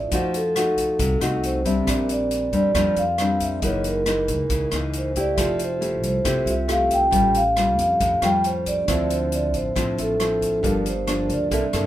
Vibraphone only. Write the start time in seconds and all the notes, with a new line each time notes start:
Already playing: D5
0.14 C5
0.36 A4
1.45 C5
1.66 E5
2.12 D5
2.56 D5
2.98 F5
3.43 E5
3.65 C#5
3.88 A#4
4.98 C5
5.20 D5
5.64 C5
6.08 C5
6.51 E5
6.71 F5
6.94 G5
7.37 F5
7.81 F5
8.24 G5
8.46 C5
8.68 D5
9.12 C5
9.34 D5
9.56 C5
10.02 A4
10.67 A#4
10.89 C5
11.32 D5